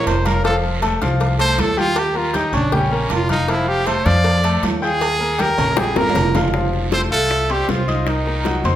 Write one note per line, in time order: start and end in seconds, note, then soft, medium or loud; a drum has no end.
0.00 0.19 A#3 medium
0.00 0.19 A#4 medium
0.00 0.19 A#5 medium
0.07 0.96 F1 medium
0.07 0.28 C5 medium
0.07 cowbell medium
0.07 high conga soft
0.07 low timbale medium
0.07 low agogo loud
0.07 short guiro medium
0.25 0.41 F4 medium
0.25 0.45 A#4 medium
0.25 0.41 F5 medium
0.25 0.41 F6 medium
0.25 cowbell medium
0.25 high conga medium
0.25 low timbale medium
0.25 low agogo medium
0.25 short guiro medium
0.44 0.75 F3 medium
0.44 0.76 F4 medium
0.44 0.56 A4 medium
0.44 0.76 F5 medium
0.44 cowbell loud
0.44 high conga soft
0.44 low agogo medium
0.44 long guiro medium
0.65 high conga soft
0.82 0.98 A3 medium
0.82 0.98 A4 medium
0.82 0.98 A5 medium
0.82 cowbell medium
0.82 high conga medium
0.82 low timbale medium
0.82 low agogo loud
0.82 short guiro medium
1.01 1.55 C2 loud
1.01 1.33 F3 medium
1.01 1.33 F4 medium
1.01 1.33 F5 medium
1.01 cowbell medium
1.01 high conga loud
1.01 short guiro medium
1.20 cowbell loud
1.20 high conga soft
1.20 low agogo medium
1.20 long guiro medium
1.39 1.70 A3 medium
1.39 1.71 A4 medium
1.39 1.62 C5 loud
1.39 1.70 A5 medium
1.39 cowbell medium
1.39 high conga soft
1.39 low agogo loud
1.58 2.48 D#2 medium
1.58 1.80 A4 loud
1.58 cowbell medium
1.58 high conga medium
1.58 low timbale medium
1.58 low agogo medium
1.58 short guiro medium
1.77 2.00 F4 loud
1.77 2.08 G4 medium
1.77 2.09 G5 medium
1.77 2.09 G6 medium
1.77 high conga medium
1.77 short guiro medium
1.96 2.19 G4 medium
1.96 cowbell loud
1.96 high conga soft
1.96 low agogo loud
1.96 long guiro medium
2.14 2.30 A#3 medium
2.14 2.38 F4 medium
2.14 2.31 A#4 medium
2.14 2.31 A#5 medium
2.14 high conga soft
2.33 2.55 D#4 medium
2.33 2.50 G4 medium
2.33 2.50 G5 medium
2.33 2.50 G6 medium
2.33 cowbell medium
2.33 high conga loud
2.33 low timbale medium
2.33 low agogo medium
2.33 short guiro medium
2.53 3.06 A#1 loud
2.53 2.69 C#4 medium
2.53 2.76 D4 medium
2.53 2.69 C#5 medium
2.53 2.69 C#6 medium
2.53 low conga medium
2.53 low agogo loud
2.53 short guiro medium
2.72 2.88 G3 medium
2.72 3.14 C#4 medium
2.72 2.88 G4 medium
2.72 2.89 G5 medium
2.72 cowbell loud
2.72 high conga soft
2.72 low conga medium
2.72 long guiro medium
2.91 3.22 A#3 medium
2.91 3.23 A#4 medium
2.91 3.23 A#5 medium
2.91 high conga soft
3.10 4.00 F1 medium
3.10 3.31 F4 medium
3.10 cowbell medium
3.10 high conga soft
3.10 low timbale medium
3.10 low agogo loud
3.10 short guiro medium
3.29 3.52 D#4 loud
3.29 3.45 F4 medium
3.29 3.46 F5 medium
3.29 3.46 F6 medium
3.29 cowbell medium
3.29 high conga medium
3.29 low agogo medium
3.29 short guiro medium
3.48 3.80 F3 medium
3.48 3.70 E4 medium
3.48 3.80 F4 medium
3.48 3.80 F5 medium
3.48 cowbell loud
3.48 high conga soft
3.48 low agogo medium
3.48 long guiro medium
3.68 3.88 G4 medium
3.68 high conga soft
3.87 4.03 A3 medium
3.87 4.03 A4 medium
3.87 4.07 C5 medium
3.87 4.03 A5 medium
3.87 cowbell medium
3.87 high conga medium
3.87 low timbale medium
3.87 low agogo loud
3.87 short guiro medium
4.05 4.59 F2 loud
4.05 4.37 F3 loud
4.05 4.37 F4 medium
4.05 4.63 D5 loud
4.05 4.37 F5 loud
4.05 cowbell medium
4.05 high conga loud
4.05 short guiro medium
4.24 cowbell loud
4.24 high conga soft
4.24 low agogo medium
4.24 long guiro medium
4.44 4.75 A3 medium
4.44 4.76 A4 medium
4.44 4.76 A5 medium
4.44 cowbell medium
4.44 high conga soft
4.44 low agogo loud
4.63 5.52 D#2 loud
4.63 cowbell medium
4.63 high conga medium
4.63 low timbale medium
4.63 low agogo medium
4.63 short guiro medium
4.82 5.13 F4 medium
4.82 5.43 G#4 loud
4.82 5.13 G5 medium
4.82 5.14 G6 medium
4.82 short guiro medium
5.01 cowbell loud
5.01 high conga soft
5.01 low agogo loud
5.01 long guiro medium
5.20 5.36 A#3 medium
5.20 5.36 A#4 medium
5.20 5.36 A#5 medium
5.20 high conga soft
5.38 5.55 G4 medium
5.38 5.81 A#4 loud
5.38 5.55 G5 medium
5.38 5.55 G6 medium
5.38 cowbell medium
5.38 high conga loud
5.38 low timbale medium
5.38 low agogo medium
5.38 short guiro medium
5.58 5.94 A#1 loud
5.58 5.74 C#4 medium
5.58 5.74 C#5 medium
5.58 5.74 C#6 medium
5.58 low conga medium
5.58 high timbale medium
5.58 low agogo loud
5.58 short guiro medium
5.71 high timbale medium
5.76 5.93 G3 medium
5.76 5.93 G4 medium
5.76 5.99 G#4 medium
5.76 5.93 G5 medium
5.76 cowbell loud
5.76 high bongo loud
5.76 high conga medium
5.76 long guiro medium
5.84 high timbale medium
5.96 6.14 G1 medium
5.96 6.28 A#3 medium
5.96 6.28 A#4 medium
5.96 6.45 A#4 loud
5.96 6.28 A#5 medium
5.96 high bongo loud
5.96 high conga medium
5.96 high timbale loud
6.10 low timbale loud
6.15 7.05 F1 medium
6.15 cowbell medium
6.15 low bongo medium
6.15 low conga loud
6.15 low agogo loud
6.15 short guiro medium
6.23 low timbale medium
6.34 6.50 F4 medium
6.34 6.51 F5 medium
6.34 6.51 F6 medium
6.34 cowbell medium
6.34 low bongo medium
6.34 low conga medium
6.34 low timbale loud
6.34 low agogo medium
6.34 short guiro medium
6.48 low timbale medium
6.54 6.85 F3 medium
6.54 6.85 F4 medium
6.54 6.86 F5 medium
6.54 high bongo medium
6.54 high conga soft
6.54 long guiro medium
6.73 high bongo soft
6.73 high conga soft
6.92 7.08 A3 medium
6.92 7.02 C4 medium
6.92 7.08 A4 medium
6.92 7.02 C5 loud
6.92 7.08 A5 medium
6.92 high bongo medium
6.92 high conga medium
6.92 high timbale medium
6.92 short guiro medium
7.11 7.65 C2 medium
7.11 7.53 A3 medium
7.11 7.43 F4 medium
7.11 7.53 A4 loud
7.11 7.43 F5 medium
7.11 7.43 F6 medium
7.11 short guiro medium
7.30 high bongo medium
7.30 high conga soft
7.30 high timbale medium
7.50 7.72 G3 medium
7.50 7.81 C4 medium
7.50 7.72 G4 loud
7.50 7.81 C5 medium
7.50 7.82 C6 medium
7.50 high bongo soft
7.50 high conga soft
7.50 high timbale medium
7.68 8.59 C2 medium
7.68 8.08 F3 medium
7.68 8.08 F4 medium
7.68 high bongo soft
7.68 low bongo medium
7.68 high conga medium
7.68 low timbale medium
7.68 short guiro medium
7.88 8.19 D#4 medium
7.88 8.19 D#5 medium
7.88 8.20 D#6 medium
7.88 high bongo soft
7.88 high conga medium
7.88 high timbale medium
7.88 short guiro medium
8.07 8.76 D#3 medium
8.07 8.76 D#4 medium
8.07 high bongo medium
8.07 high conga soft
8.07 high timbale medium
8.07 long guiro medium
8.27 8.42 A#3 medium
8.27 8.42 A#4 medium
8.27 8.43 A#5 medium
8.27 high bongo soft
8.27 high conga soft
8.45 8.61 F#3 medium
8.45 8.62 F#4 medium
8.45 8.62 F#5 medium
8.45 high bongo medium
8.45 high conga loud
8.45 high timbale medium
8.45 short guiro medium
8.64 8.76 F2 medium
8.64 8.76 C4 medium
8.64 8.76 C5 medium
8.64 8.76 C6 medium
8.64 high conga soft
8.64 low conga medium
8.64 high timbale medium
8.64 short guiro medium